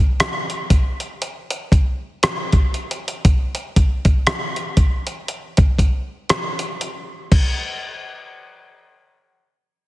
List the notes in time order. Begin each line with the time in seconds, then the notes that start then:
0.20 cross-stick, closed hi-hat
0.50 closed hi-hat
0.70 kick, closed hi-hat
1.00 closed hi-hat
1.22 closed hi-hat
1.50 closed hi-hat
1.72 kick, closed hi-hat
2.23 cross-stick, closed hi-hat
2.52 kick, closed hi-hat
2.74 closed hi-hat
2.91 closed hi-hat
3.08 closed hi-hat
3.25 kick, closed hi-hat
3.55 closed hi-hat
3.76 kick, closed hi-hat
4.05 kick, closed hi-hat
4.27 cross-stick, closed hi-hat
4.56 closed hi-hat
4.77 kick, closed hi-hat
5.07 closed hi-hat
5.28 closed hi-hat
5.57 kick, closed hi-hat
5.79 kick, closed hi-hat
6.29 cross-stick, closed hi-hat
6.59 closed hi-hat
6.81 closed hi-hat
7.32 kick, crash